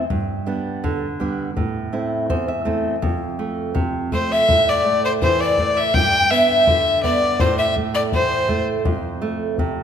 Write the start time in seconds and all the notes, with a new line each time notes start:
0.10 G2, bombo low
0.46 G3 B3 D4
0.84 D3, bombo low
1.20 G3 B3 D4, bombo low
1.57 A2, bombo low
1.93 A3 C4 E4
2.30 E2 C5, bombo low
2.48 E5
2.65 A3 C4 E4, bombo low
3.02 F2, bombo low
3.39 A3
3.75 C3, bombo low
4.12 A3 C5, bombo low
4.32 E5
4.48 A2, bombo low
4.68 D5
4.85 A3
5.04 C5
5.22 E3 C5, bombo low
5.41 D5
5.57 A3, bombo low
5.76 E5
5.94 G2 G5, bombo low
6.31 B3 E5
6.67 D3, bombo low
7.03 B3 D5, bombo low
7.40 A2 C5, bombo low
7.58 E5
7.76 A3, bombo low
7.95 D5
8.12 E3 C5, bombo low
8.49 A3, bombo low
8.85 F2, bombo low
9.22 A3
9.58 C3, bombo low